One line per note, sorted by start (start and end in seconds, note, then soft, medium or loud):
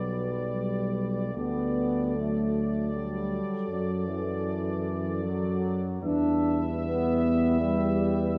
0.00 1.31 B1 soft
0.00 0.55 F#3 soft
0.00 2.17 G3 soft
0.00 1.31 B4 soft
0.00 1.31 D5 soft
0.56 1.34 G3 soft
1.35 3.38 D2 soft
1.35 2.14 B3 medium
1.35 5.86 A4 soft
1.35 5.85 D5 soft
2.15 5.75 F#3 soft
2.15 2.92 A3 soft
2.92 3.69 G3 medium
3.69 5.99 F#2 soft
3.69 4.07 F#3 soft
4.07 5.22 E3 medium
5.21 6.03 F#3 medium
6.02 8.38 E2 medium
6.02 8.38 G3 soft
6.02 6.65 D4 medium
6.02 8.38 B4 soft
6.02 8.36 E5 soft
6.82 7.57 B3 medium
7.59 8.38 G3 medium